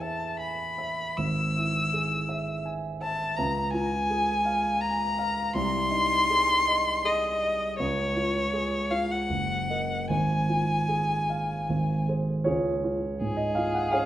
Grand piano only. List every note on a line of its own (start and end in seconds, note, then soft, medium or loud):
0.00 1.13 E2 medium
0.00 1.20 E4 soft
0.00 0.23 G#4 soft
0.00 0.62 E5 soft
0.38 1.02 G#5 soft
0.78 1.18 E5 soft
1.18 3.35 G#1 medium
1.56 2.15 E4 soft
1.93 2.52 G#4 soft
2.29 2.87 E5 soft
2.65 3.24 G#5 soft
3.01 3.38 E5 soft
3.38 5.52 C#2 medium
3.74 4.32 F4 soft
4.10 4.67 G#4 medium
4.45 5.04 F5 medium
4.81 5.41 G#5 medium
5.18 5.56 F5 medium
5.55 7.74 C2 medium
5.91 6.52 D#4 medium
6.30 6.90 G#4 medium
6.67 7.27 D#5 medium
7.04 7.64 G#4 medium
7.42 7.79 D#5 medium
7.79 9.26 C#2 medium
8.16 8.76 F4 medium
8.53 9.14 G#4 medium
8.91 9.30 F4 medium
9.30 10.07 F#1 medium
9.69 10.05 A#4 soft
9.69 10.06 D#5 soft
10.09 11.66 G#1 medium
10.49 11.15 F4 soft
10.88 11.54 G#4 soft
11.30 11.70 F5 soft
11.69 12.45 G#1 medium
12.08 12.43 G#4 soft
12.08 12.44 C5 medium
12.44 14.05 C#2 medium
12.44 12.83 F4 medium
12.44 13.35 G#4 medium
12.44 13.38 C#5 medium
12.84 13.43 F4 soft
13.21 13.79 G#2 soft
13.37 13.56 D#5 medium
13.55 14.05 F4 soft
13.55 13.74 F5 medium
13.75 13.93 F#5 medium
13.92 14.05 C#4 soft
13.92 14.05 G#4 medium
13.92 14.05 C#5 medium
13.92 14.05 F5 medium